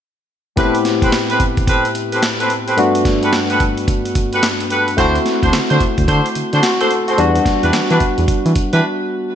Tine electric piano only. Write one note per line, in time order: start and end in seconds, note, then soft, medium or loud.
0.56 2.73 A2 medium
0.56 2.73 B3 medium
0.56 2.74 C4 medium
0.56 2.74 E4 medium
0.56 2.74 G4 medium
2.77 4.93 G2 medium
2.77 4.94 A3 medium
2.77 4.94 B3 medium
2.77 4.94 D4 medium
2.77 4.94 F#4 medium
4.97 7.14 A3 medium
4.97 7.14 C4 medium
4.97 7.14 E4 medium
4.97 6.60 F#4 medium
6.63 6.80 F#4 medium
6.81 7.07 A4 medium
7.08 7.18 F#4 medium
7.17 9.34 G3 medium
7.17 9.34 B3 medium
7.17 9.35 D4 medium
7.17 9.35 F#4 medium